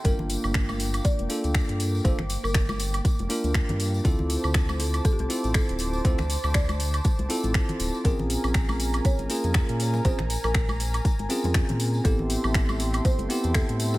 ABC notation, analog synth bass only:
X:1
M:4/4
L:1/16
Q:"Swing 16ths" 1/4=120
K:Gdor
V:1 name="Analog synth bass" clef=bass
G,,, G,,, z G,,,4- G,,, z F,,, z D,, z G,,3 | G,,, G,,, z G,,,4- G,,, z F,,, z D,, z G,,3 | D,, D,, z D,,4- D,, z C,, z A,,, z D,,,3 | D,, D,, z D,,4- D,, z C,, z A,,, z2 D,,, z |
B,,, B,,, z B,,,4- B,,, z _A,,, z F,, z B,,3 | B,,, B,,, z B,,,4- B,,, z _A,,, z F,, z B,,3 | A,,, A,,, z A,,,4- A,,, z G,,, z E,, z A,,3 |]